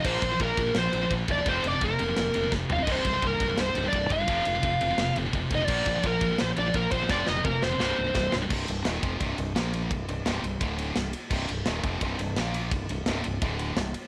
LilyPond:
<<
  \new Staff \with { instrumentName = "Lead electric guitar" } { \time 4/4 \key c \minor \tempo 4 = 171 c''4 bes'4 c''4 r8 d''8 | c''8 d''8 bes'2 r8 f''16 ees''16 | c''4 bes'4 c''8. d''8. f''8~ | f''2~ f''8 r4 ees''16 d''16~ |
d''4 bes'4 c''8 d''8 bes'8 c''8 | d''8 ees''8 bes'8 c''2 r8 | r1 | r1 |
r1 | r1 | }
  \new Staff \with { instrumentName = "Lead electric guitar" } { \time 4/4 \key c \minor c'4 bes4 c'4 r8 d'8 | c'8 d'8 bes2 r8 f'16 ees'16 | c'4 bes4 c'8. d'8. f'8~ | f'2~ f'8 r4 ees'16 d'16~ |
d'4 bes4 c'8 d'8 bes8 c'8 | d'8 ees'8 bes8 c'2 r8 | r1 | r1 |
r1 | r1 | }
  \new Staff \with { instrumentName = "Distorted electric guitar" } { \clef bass \time 4/4 \key c \minor <bes, f bes>8 <bes, f>16 <bes, f>16 <bes, f>8 <bes, f>16 <bes, f>16 <bes, f>8 <bes, f>16 <bes, f>16 <bes, f>8 <bes, f>16 <bes, f>16 | <f, c f>8 <f, c>16 <f, c>16 <f, c>8 <f, c>16 <f, c>16 <f, c>8 <f, c>16 <f, c>16 <f, c>8 <f, c>16 <f, c>16 | <c, g, c>8 <c, g,>16 <c, g,>16 <c, g,>8 <c, g,>16 <c, g,>16 <c, g,>8 <c, g,>16 <c, g,>16 <c, g,>8 <c, g,>16 <c, g,>16 | <f, c f>8 <f, c>16 <f, c>16 <f, c>8 <f, c>16 <f, c>16 <f, c>8 <f, c>16 <f, c>16 <f, c>8 <f, c>16 <f, c>16 |
<bes, f bes>8 <bes, f>16 <bes, f>16 <bes, f>8 <bes, f>16 <bes, f>16 <bes, f>8 <bes, f>16 <bes, f>16 <bes, f>8 <bes, f>16 <bes, f>16 | <f, c f>8 <f, c>16 <f, c>16 <f, c>8 <f, c>16 <f, c>16 <c, g, c>8 <c, g,>16 <c, g,>16 <c, g,>8 <c, g,>16 <c, g,>16 | r1 | r1 |
r1 | r1 | }
  \new Staff \with { instrumentName = "Distorted electric guitar" } { \clef bass \time 4/4 \key c \minor <bes, f bes>8 <bes, f>16 <bes, f>16 <bes, f>8 <bes, f>16 <bes, f>16 <bes, f>8 <bes, f>16 <bes, f>16 <bes, f>8 <bes, f>16 <bes, f>16 | <f, c f>8 <f, c>16 <f, c>16 <f, c>8 <f, c>16 <f, c>16 <f, c>8 <f, c>16 <f, c>16 <f, c>8 <f, c>16 <f, c>16 | <c, g, c>8 <c, g,>16 <c, g,>16 <c, g,>8 <c, g,>16 <c, g,>16 <c, g,>8 <c, g,>16 <c, g,>16 <c, g,>8 <c, g,>16 <c, g,>16 | <f, c f>8 <f, c>16 <f, c>16 <f, c>8 <f, c>16 <f, c>16 <f, c>8 <f, c>16 <f, c>16 <f, c>8 <f, c>16 <f, c>16 |
<bes, f bes>8 <bes, f>16 <bes, f>16 <bes, f>8 <bes, f>16 <bes, f>16 <bes, f>8 <bes, f>16 <bes, f>16 <bes, f>8 <bes, f>16 <bes, f>16 | <f, c f>8 <f, c>16 <f, c>16 <f, c>8 <f, c>16 <f, c>16 <c, g, c>8 <c, g,>16 <c, g,>16 <c, g,>8 <c, g,>16 <c, g,>16 | <c, g, c>8 <c, g,>8 <ees, bes, ees>8 <f, c f>8 <c, g, c>8 <c, g,>8 <bes, f bes>4 | <c, g,>8 <c, g,>8 <c, g, c>8 <c, g,>8 <d, a, d>4 <c, g,>8 r8 |
<c, g, c>8 <c, g,>8 <ees, bes, ees>8 <f, c f>8 <c, g, c>8 <c, g,>8 <bes, f bes>4 | <c, g,>8 <c, g,>8 <c, g, c>8 <c, g,>8 <d, a, d>4 <c, g,>8 r8 | }
  \new Staff \with { instrumentName = "Fingered electric bass" } { \clef bass \time 4/4 \key c \minor bes,,8 bes,,8 bes,,8 bes,,8 bes,,8 bes,,8 bes,,8 ees,,8 | f,,8 f,,8 f,,8 f,,8 f,,8 f,,8 f,,8 f,,8 | c,,8 c,,8 c,,8 c,,8 c,,8 c,,8 c,,8 g,,8 | f,,8 f,,8 f,,8 f,,8 f,,8 f,,8 f,,8 f,,8 |
bes,,8 bes,,8 bes,,8 bes,,8 bes,,8 bes,,8 bes,,8 bes,,8 | f,,8 f,,8 f,,8 f,,8 c,,8 c,,8 c,,8 c,,8 | c,,8 c,,8 ees,,8 f,,8 c,,8 c,,8 bes,,4 | c,,8 c,,8 c,,8 c,,8 d,,4 c,,8 r8 |
c,,8 c,,8 ees,,8 f,,8 c,,8 c,,8 bes,,4 | c,,8 c,,8 c,,8 c,,8 d,,4 c,,8 r8 | }
  \new DrumStaff \with { instrumentName = "Drums" } \drummode { \time 4/4 <cymc bd>8 <bd cymr>8 <bd cymr>8 <bd cymr>8 <cymr sn>8 cymr8 <bd cymr>8 <bd cymr>8 | <bd cymr>8 cymr8 <bd cymr>8 cymr8 <cymr sn>8 cymr8 <bd sn>8 tomfh8 | <cymc bd>8 <bd cymr>8 <bd cymr>8 <bd cymr>8 <cymr sn>8 cymr8 <bd cymr>8 <bd cymr>8 | <bd cymr>8 cymr8 <bd cymr>8 cymr8 <cymr sn>8 cymr8 <bd cymr>8 <bd cymr>8 |
<cymc bd>8 <bd cymr>8 <bd cymr>8 <bd cymr>8 <cymr sn>8 cymr8 <bd cymr>8 <bd cymr>8 | <bd sn>8 sn8 bd8 sn8 sn4 <bd sn>8 sn8 | <cymc bd>8 cymr8 <cymr sn>8 <bd cymr>8 <bd cymr>8 cymr8 <cymr sn>8 cymr8 | <bd cymr>8 cymr8 <cymr sn>8 cymr8 <bd cymr>8 cymr8 <cymr sn>8 cymr8 |
<cymc bd>8 cymr8 <cymr sn>8 <bd cymr>8 <bd cymr>8 cymr8 <cymr sn>8 cymr8 | <bd cymr>8 cymr8 <cymr sn>8 cymr8 <bd cymr>8 cymr8 <cymr sn>8 cymr8 | }
>>